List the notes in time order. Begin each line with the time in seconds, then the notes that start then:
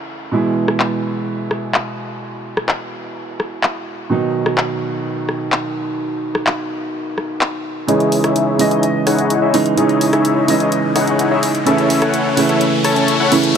Already playing: C#3 E3 A3 E4
0.31 B2 E3 G#3 E4
0.68 cross-stick
0.80 clap
1.51 cross-stick
1.74 clap
2.57 cross-stick
2.69 clap
3.40 cross-stick
3.63 clap
4.09 B2 D#3 F#3 D#4
4.46 cross-stick
4.58 clap
5.29 cross-stick
5.52 clap
6.35 cross-stick
6.47 clap
7.18 cross-stick
7.41 clap
7.87 C#3 E3 G#3 D#4 E4 G#4 C#5 D#5, closed hi-hat, riser
8.00 closed hi-hat
8.12 open hi-hat
8.24 D#4 E4 G#4 C#5 E5, cross-stick, closed hi-hat
8.36 closed hi-hat
8.58 C#3 E3 G#3 D#5, open hi-hat
8.71 D#4 E4 G#4 C#5 D#5, closed hi-hat
8.83 closed hi-hat
9.06 D#4 E4 G#4 C#5 F#5, cross-stick, open hi-hat
9.18 closed hi-hat
9.30 closed hi-hat
9.42 D#4 E4 G#4 C#5 E5
9.53 C#3 E3 G#3 D#4, open hi-hat
9.66 closed hi-hat
9.76 C#3 E3 G#3 D#4 E4 G#4 C#5 D#5, closed hi-hat
9.89 closed hi-hat
10.01 open hi-hat
10.13 D#4 E4 G#4 C#5 E5, cross-stick, closed hi-hat
10.25 closed hi-hat
10.47 C#3 E3 G#3 D#5, open hi-hat
10.60 D#4 E4 G#4 C#5 D#5, closed hi-hat
10.72 closed hi-hat
10.96 D#4 E4 G#4 C#5 F#5, cross-stick, open hi-hat
11.07 closed hi-hat
11.19 closed hi-hat
11.31 D#4 E4 G#4 C#5 E5
11.43 open hi-hat
11.55 closed hi-hat
11.65 C#3 E3 A3 C#4 E4 A4 C#5 E5, closed hi-hat
11.78 closed hi-hat
11.90 open hi-hat
12.02 C#4 E4 A4 C#5 F#5, cross-stick, closed hi-hat
12.14 closed hi-hat
12.36 C#3 E3 A3 E4, open hi-hat
12.49 C#4 E4 A4 C#5 E5, closed hi-hat
12.61 closed hi-hat
12.84 C#4 E4 A4 C#5 A5, cross-stick, open hi-hat
12.96 closed hi-hat
13.08 closed hi-hat
13.20 C#4 E4 A4 C#5 F#5
13.31 C#3 E3 A3 E4, open hi-hat
13.44 closed hi-hat
13.54 C#3